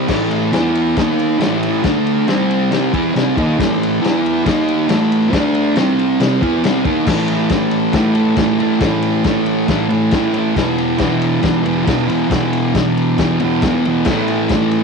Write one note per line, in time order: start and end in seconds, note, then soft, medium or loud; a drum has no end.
0.00 0.10 C4 medium
0.08 0.52 A2 loud
0.08 0.51 E3 medium
0.08 0.53 A3 loud
0.08 kick loud
0.08 snare loud
0.08 crash loud
0.31 ride medium
0.53 0.96 E3 medium
0.53 0.96 B3 loud
0.53 0.96 E4 loud
0.53 snare loud
0.53 ride loud
0.75 ride medium
0.96 1.38 D#3 medium
0.96 1.39 A#3 medium
0.96 1.40 D#4 loud
0.96 kick loud
0.96 snare loud
0.96 ride loud
1.19 ride medium
1.39 1.83 A2 medium
1.39 1.83 E3 medium
1.39 1.83 A3 medium
1.39 snare loud
1.39 ride loud
1.63 ride medium
1.84 2.27 D3 medium
1.84 2.27 A3 medium
1.84 2.28 D4 loud
1.84 kick loud
1.84 snare loud
1.84 ride loud
2.07 ride medium
2.28 2.71 C3 medium
2.28 2.71 G3 medium
2.28 2.72 C4 medium
2.28 snare loud
2.28 ride loud
2.50 ride medium
2.72 2.93 C3 medium
2.72 2.93 G3 medium
2.72 2.93 C4 loud
2.72 snare loud
2.72 ride loud
2.93 3.14 E3 medium
2.93 3.15 B3 medium
2.93 3.15 E4 medium
2.93 kick loud
2.93 ride medium
3.15 3.36 C3 medium
3.15 3.37 G3 loud
3.15 3.37 C4 loud
3.15 snare loud
3.15 ride loud
3.37 3.58 D#3 loud
3.37 3.58 A#3 loud
3.37 3.59 D#4 loud
3.37 kick loud
3.37 ride medium
3.59 4.00 A2 medium
3.59 4.00 E3 medium
3.59 4.02 A3 medium
3.59 kick loud
3.59 snare loud
3.59 ride loud
3.83 ride medium
4.01 4.44 E3 medium
4.01 4.45 B3 loud
4.01 4.45 E4 medium
4.01 ride loud
4.06 snare loud
4.26 ride medium
4.45 4.88 D#3 medium
4.45 4.88 A#3 medium
4.45 4.89 D#4 loud
4.45 kick loud
4.45 snare loud
4.45 ride loud
4.68 ride medium
4.88 5.33 A2 medium
4.88 5.33 E3 medium
4.88 5.33 A3 loud
4.88 snare loud
4.88 ride loud
5.12 ride medium
5.33 5.76 D3 loud
5.33 5.76 A3 medium
5.33 5.76 D4 loud
5.33 kick loud
5.33 snare loud
5.33 ride loud
5.54 ride medium
5.76 6.19 C3 medium
5.76 6.20 G3 medium
5.76 6.20 C4 loud
5.76 snare loud
5.76 ride loud
5.99 ride medium
6.20 6.41 C3 medium
6.20 6.42 G3 loud
6.20 6.42 C4 loud
6.20 snare loud
6.20 ride loud
6.42 6.63 E3 loud
6.42 6.63 B3 loud
6.42 6.64 E4 loud
6.42 kick loud
6.42 ride medium
6.64 6.85 C3 medium
6.64 6.85 G3 medium
6.64 6.86 C4 medium
6.64 snare loud
6.64 ride loud
6.85 7.05 D#3 medium
6.85 7.07 A#3 loud
6.85 7.07 D#4 loud
6.85 kick loud
6.85 ride medium
7.05 7.50 A2 medium
7.05 7.52 E3 loud
7.05 7.52 A3 loud
7.05 kick loud
7.05 snare loud
7.05 crash loud
7.28 ride medium
7.49 7.92 A2 medium
7.49 7.95 E3 medium
7.49 7.95 A3 medium
7.49 kick loud
7.49 snare loud
7.49 ride loud
7.71 ride medium
7.93 8.36 A2 medium
7.93 8.18 E3 medium
7.93 8.14 A3 medium
7.93 kick loud
7.93 snare loud
7.93 ride loud
8.15 8.38 E3 medium
8.15 8.39 A3 medium
8.15 ride medium
8.36 8.77 A2 medium
8.36 8.61 E3 medium
8.36 8.58 A3 medium
8.36 kick loud
8.36 snare loud
8.36 ride loud
8.59 8.80 E3 medium
8.59 8.80 A3 medium
8.59 ride medium
8.79 9.24 A2 medium
8.79 9.25 E3 medium
8.79 9.25 A3 loud
8.79 kick loud
8.79 snare loud
8.79 ride loud
9.02 ride medium
9.24 9.66 A2 medium
9.24 9.68 E3 loud
9.24 9.69 A3 loud
9.24 kick loud
9.24 snare loud
9.24 ride loud
9.46 ride medium
9.67 10.11 A2 medium
9.67 9.92 E3 medium
9.67 9.87 A3 medium
9.67 kick loud
9.67 snare loud
9.67 ride loud
9.89 10.14 E3 medium
9.89 10.15 A3 medium
9.89 ride medium
10.11 10.55 A2 medium
10.11 10.37 E3 medium
10.11 kick loud
10.11 snare loud
10.11 ride loud
10.16 10.32 A3 medium
10.33 10.54 A3 medium
10.33 ride medium
10.37 10.57 E3 medium
10.55 10.98 E2 loud
10.55 10.99 B2 medium
10.55 11.02 E3 loud
10.55 kick loud
10.55 snare loud
10.55 ride loud
10.78 ride medium
10.98 11.40 E2 medium
10.98 11.43 B2 medium
10.98 11.45 E3 loud
10.98 kick loud
10.98 snare loud
10.98 ride loud
11.21 ride medium
11.42 11.83 E2 medium
11.42 11.65 B2 medium
11.42 11.63 E3 medium
11.42 kick loud
11.42 snare loud
11.42 ride loud
11.63 11.85 B2 medium
11.63 11.87 E3 medium
11.63 ride medium
11.84 12.27 E2 medium
11.84 12.09 B2 medium
11.84 12.06 E3 medium
11.84 kick loud
11.84 ride loud
11.89 snare loud
12.07 12.29 B2 medium
12.07 12.31 E3 medium
12.07 ride medium
12.28 12.73 E2 loud
12.28 12.73 B2 medium
12.28 12.76 E3 loud
12.28 kick loud
12.28 snare loud
12.28 ride loud
12.53 ride medium
12.74 13.17 E2 medium
12.74 13.18 B2 loud
12.74 13.21 E3 medium
12.74 kick loud
12.74 snare loud
12.74 ride loud
12.97 ride medium
13.18 13.62 E2 medium
13.18 13.43 B2 medium
13.18 13.41 E3 medium
13.18 kick loud
13.18 snare loud
13.18 ride loud
13.40 13.66 E3 medium
13.40 ride medium
13.45 13.64 B2 medium
13.62 14.05 E2 medium
13.62 13.88 B2 medium
13.62 kick loud
13.62 snare loud
13.62 ride loud
13.67 13.86 E3 medium
13.85 14.07 B2 medium
13.85 14.08 E3 medium
13.85 ride medium
14.05 14.50 A2 loud
14.05 kick loud
14.05 snare loud
14.05 crash loud
14.09 14.52 E3 loud
14.09 14.54 A3 loud
14.28 ride medium
14.49 14.84 A2 medium
14.49 14.84 E3 loud
14.49 kick loud
14.49 snare loud
14.49 ride loud
14.54 14.84 A3 medium
14.71 ride medium